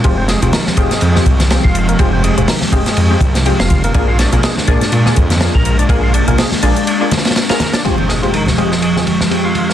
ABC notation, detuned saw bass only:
X:1
M:4/4
L:1/16
Q:"Swing 16ths" 1/4=123
K:Fdor
V:1 name="Detuned saw bass" clef=bass
F,,,2 z F,,, z2 F,,, z F,, z C,,2 z F,,,2 z | F,,,2 z F,,, z2 F,,, z F,, z C,,2 z F,,,2 z | B,,,2 z B,,, z2 B,,, z B,, z F,,2 z B,,,2 z | B,,,2 z B,,, z2 B,,, z8 z |
z16 |]